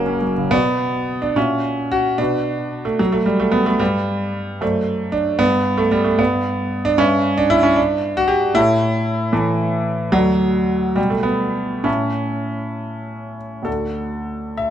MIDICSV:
0, 0, Header, 1, 2, 480
1, 0, Start_track
1, 0, Key_signature, 2, "minor"
1, 0, Tempo, 609137
1, 409, Time_signature, 6, 3, 24, 8
1, 409, Tempo, 560748
1, 1369, Tempo, 540541
1, 3769, Tempo, 525394
1, 6188, Key_signature, 2, "major"
1, 8569, Tempo, 543971
1, 9529, Tempo, 600000
1, 12743, End_track
2, 0, Start_track
2, 0, Title_t, "Grand piano"
2, 0, Program_c, 0, 0
2, 0, Control_c, 0, 64, 127
2, 0, Note_on_c, 0, 30, 66
2, 0, Note_on_c, 0, 42, 76
2, 0, Note_on_c, 0, 49, 49
2, 0, Note_on_c, 0, 54, 52
2, 0, Note_on_c, 0, 58, 102
2, 0, Note_on_c, 0, 61, 50
2, 0, Note_on_c, 0, 66, 69
2, 0, Note_on_c, 0, 70, 94
2, 48, Note_off_c, 0, 61, 0
2, 48, Note_on_c, 0, 61, 55
2, 129, Note_off_c, 0, 54, 0
2, 145, Note_off_c, 0, 66, 0
2, 171, Note_off_c, 0, 70, 0
2, 173, Note_on_c, 0, 54, 53
2, 248, Note_off_c, 0, 61, 0
2, 296, Note_off_c, 0, 49, 0
2, 296, Note_on_c, 0, 49, 57
2, 363, Note_off_c, 0, 54, 0
2, 374, Note_off_c, 0, 30, 0
2, 376, Note_off_c, 0, 42, 0
2, 401, Note_off_c, 0, 58, 0
2, 401, Note_on_c, 0, 47, 61
2, 401, Note_on_c, 0, 59, 110
2, 403, Note_on_c, 0, 66, 51
2, 406, Note_on_c, 0, 74, 55
2, 409, Note_off_c, 0, 49, 0
2, 422, Control_c, 0, 64, 0
2, 588, Control_c, 0, 64, 127
2, 1004, Note_off_c, 0, 59, 0
2, 1007, Note_on_c, 0, 62, 85
2, 1104, Note_off_c, 0, 47, 0
2, 1105, Note_off_c, 0, 66, 0
2, 1107, Note_off_c, 0, 74, 0
2, 1127, Note_on_c, 0, 46, 56
2, 1129, Note_off_c, 0, 62, 0
2, 1131, Note_on_c, 0, 61, 91
2, 1132, Note_on_c, 0, 66, 44
2, 1138, Note_on_c, 0, 76, 47
2, 1144, Control_c, 0, 64, 0
2, 1301, Control_c, 0, 64, 127
2, 1600, Note_off_c, 0, 66, 0
2, 1613, Note_on_c, 0, 66, 98
2, 1614, Note_off_c, 0, 61, 0
2, 1831, Note_off_c, 0, 46, 0
2, 1837, Note_off_c, 0, 76, 0
2, 1844, Note_off_c, 0, 66, 0
2, 1849, Note_on_c, 0, 62, 101
2, 1853, Note_on_c, 0, 47, 63
2, 1858, Note_on_c, 0, 66, 48
2, 1860, Note_on_c, 0, 71, 50
2, 1863, Note_on_c, 0, 74, 50
2, 1872, Control_c, 0, 64, 0
2, 2000, Control_c, 0, 64, 127
2, 2443, Note_on_c, 0, 57, 83
2, 2447, Note_off_c, 0, 62, 0
2, 2566, Note_off_c, 0, 57, 0
2, 2571, Note_on_c, 0, 54, 95
2, 2585, Control_c, 0, 64, 0
2, 2686, Note_on_c, 0, 57, 89
2, 2690, Note_off_c, 0, 54, 0
2, 2734, Control_c, 0, 64, 127
2, 2804, Note_on_c, 0, 55, 90
2, 2808, Note_off_c, 0, 57, 0
2, 2927, Note_off_c, 0, 55, 0
2, 2928, Note_on_c, 0, 57, 92
2, 3034, Note_on_c, 0, 59, 93
2, 3048, Note_off_c, 0, 57, 0
2, 3160, Note_off_c, 0, 59, 0
2, 3164, Note_on_c, 0, 57, 98
2, 3251, Note_off_c, 0, 47, 0
2, 3253, Note_off_c, 0, 66, 0
2, 3254, Note_off_c, 0, 71, 0
2, 3256, Note_off_c, 0, 74, 0
2, 3278, Note_on_c, 0, 43, 60
2, 3282, Note_on_c, 0, 55, 100
2, 3283, Note_on_c, 0, 67, 49
2, 3286, Note_off_c, 0, 57, 0
2, 3290, Note_on_c, 0, 71, 47
2, 3291, Note_on_c, 0, 74, 54
2, 3301, Control_c, 0, 64, 0
2, 3425, Control_c, 0, 64, 127
2, 3988, Note_off_c, 0, 43, 0
2, 3991, Note_off_c, 0, 67, 0
2, 3994, Note_off_c, 0, 71, 0
2, 3995, Note_off_c, 0, 74, 0
2, 4012, Note_off_c, 0, 55, 0
2, 4013, Note_on_c, 0, 42, 53
2, 4016, Note_on_c, 0, 72, 48
2, 4018, Note_on_c, 0, 57, 91
2, 4023, Note_on_c, 0, 74, 44
2, 4031, Control_c, 0, 64, 0
2, 4174, Control_c, 0, 64, 127
2, 4480, Note_on_c, 0, 62, 90
2, 4497, Note_off_c, 0, 57, 0
2, 4712, Note_off_c, 0, 42, 0
2, 4714, Note_off_c, 0, 72, 0
2, 4717, Note_off_c, 0, 74, 0
2, 4720, Note_on_c, 0, 43, 66
2, 4722, Note_on_c, 0, 59, 110
2, 4727, Note_off_c, 0, 62, 0
2, 4727, Note_on_c, 0, 71, 52
2, 4731, Note_on_c, 0, 74, 50
2, 4749, Control_c, 0, 64, 0
2, 4894, Control_c, 0, 64, 127
2, 5078, Note_on_c, 0, 57, 93
2, 5090, Note_off_c, 0, 59, 0
2, 5204, Note_on_c, 0, 55, 97
2, 5207, Note_off_c, 0, 57, 0
2, 5324, Note_on_c, 0, 57, 92
2, 5330, Note_off_c, 0, 55, 0
2, 5428, Note_off_c, 0, 43, 0
2, 5431, Note_off_c, 0, 71, 0
2, 5433, Note_off_c, 0, 74, 0
2, 5448, Note_on_c, 0, 43, 59
2, 5451, Note_off_c, 0, 57, 0
2, 5453, Note_on_c, 0, 59, 95
2, 5454, Note_on_c, 0, 71, 46
2, 5458, Note_on_c, 0, 74, 47
2, 5474, Control_c, 0, 64, 0
2, 5636, Control_c, 0, 64, 127
2, 6059, Note_on_c, 0, 62, 109
2, 6066, Note_off_c, 0, 59, 0
2, 6162, Note_off_c, 0, 43, 0
2, 6164, Note_off_c, 0, 71, 0
2, 6167, Note_off_c, 0, 74, 0
2, 6179, Note_on_c, 0, 61, 109
2, 6180, Note_on_c, 0, 43, 64
2, 6181, Note_on_c, 0, 71, 51
2, 6181, Note_on_c, 0, 74, 56
2, 6183, Note_off_c, 0, 62, 0
2, 6189, Note_on_c, 0, 76, 58
2, 6204, Control_c, 0, 64, 0
2, 6349, Control_c, 0, 64, 127
2, 6539, Note_off_c, 0, 61, 0
2, 6539, Note_on_c, 0, 62, 106
2, 6653, Note_on_c, 0, 64, 112
2, 6660, Note_off_c, 0, 62, 0
2, 6772, Note_on_c, 0, 61, 96
2, 6777, Note_off_c, 0, 64, 0
2, 6893, Note_on_c, 0, 62, 97
2, 6897, Note_off_c, 0, 61, 0
2, 6916, Control_c, 0, 64, 0
2, 7053, Control_c, 0, 64, 127
2, 7260, Note_off_c, 0, 62, 0
2, 7264, Note_on_c, 0, 66, 109
2, 7362, Note_on_c, 0, 67, 101
2, 7383, Note_off_c, 0, 66, 0
2, 7577, Note_off_c, 0, 43, 0
2, 7577, Note_off_c, 0, 71, 0
2, 7577, Note_off_c, 0, 74, 0
2, 7581, Note_off_c, 0, 76, 0
2, 7604, Note_on_c, 0, 45, 69
2, 7607, Note_off_c, 0, 67, 0
2, 7608, Note_on_c, 0, 69, 57
2, 7610, Note_on_c, 0, 64, 117
2, 7615, Note_on_c, 0, 73, 57
2, 7620, Note_on_c, 0, 81, 56
2, 7634, Control_c, 0, 64, 0
2, 7762, Control_c, 0, 64, 127
2, 8299, Note_off_c, 0, 45, 0
2, 8301, Note_off_c, 0, 69, 0
2, 8304, Note_off_c, 0, 73, 0
2, 8307, Note_off_c, 0, 81, 0
2, 8318, Note_on_c, 0, 45, 55
2, 8319, Note_on_c, 0, 69, 49
2, 8322, Note_on_c, 0, 52, 87
2, 8323, Note_off_c, 0, 64, 0
2, 8327, Note_on_c, 0, 73, 44
2, 8328, Note_on_c, 0, 81, 48
2, 9017, Note_off_c, 0, 45, 0
2, 9018, Note_off_c, 0, 69, 0
2, 9021, Note_off_c, 0, 73, 0
2, 9022, Note_off_c, 0, 81, 0
2, 9031, Note_on_c, 0, 38, 63
2, 9032, Note_on_c, 0, 54, 110
2, 9034, Note_on_c, 0, 69, 50
2, 9039, Note_on_c, 0, 74, 52
2, 9040, Note_off_c, 0, 52, 0
2, 9043, Note_on_c, 0, 78, 52
2, 9059, Control_c, 0, 64, 0
2, 9180, Control_c, 0, 64, 127
2, 9732, Note_off_c, 0, 38, 0
2, 9734, Note_off_c, 0, 69, 0
2, 9736, Note_off_c, 0, 74, 0
2, 9738, Note_off_c, 0, 78, 0
2, 9740, Note_on_c, 0, 47, 50
2, 9746, Note_on_c, 0, 55, 85
2, 9748, Note_on_c, 0, 67, 41
2, 9751, Note_on_c, 0, 74, 42
2, 9753, Note_off_c, 0, 54, 0
2, 9753, Note_on_c, 0, 79, 42
2, 9774, Control_c, 0, 64, 0
2, 9861, Note_on_c, 0, 57, 77
2, 9869, Note_off_c, 0, 55, 0
2, 9898, Control_c, 0, 64, 127
2, 9965, Note_on_c, 0, 59, 86
2, 9985, Note_off_c, 0, 57, 0
2, 10444, Note_off_c, 0, 47, 0
2, 10448, Note_off_c, 0, 67, 0
2, 10449, Note_off_c, 0, 74, 0
2, 10450, Note_off_c, 0, 79, 0
2, 10450, Note_on_c, 0, 45, 52
2, 10452, Note_on_c, 0, 61, 84
2, 10455, Note_on_c, 0, 64, 46
2, 10458, Note_on_c, 0, 76, 45
2, 10461, Note_off_c, 0, 59, 0
2, 10462, Note_on_c, 0, 81, 40
2, 10491, Control_c, 0, 64, 0
2, 10642, Control_c, 0, 64, 127
2, 11660, Note_off_c, 0, 61, 0
2, 11866, Note_off_c, 0, 45, 0
2, 11868, Note_off_c, 0, 64, 0
2, 11870, Note_off_c, 0, 76, 0
2, 11872, Note_off_c, 0, 81, 0
2, 11881, Note_on_c, 0, 38, 45
2, 11891, Note_on_c, 0, 62, 40
2, 11897, Note_on_c, 0, 66, 41
2, 11899, Note_on_c, 0, 69, 76
2, 11927, Control_c, 0, 64, 0
2, 12048, Control_c, 0, 64, 127
2, 12641, Note_on_c, 0, 76, 85
2, 12646, Note_off_c, 0, 69, 0
2, 12743, Note_off_c, 0, 38, 0
2, 12743, Note_off_c, 0, 62, 0
2, 12743, Note_off_c, 0, 66, 0
2, 12743, Note_off_c, 0, 76, 0
2, 12743, End_track
0, 0, End_of_file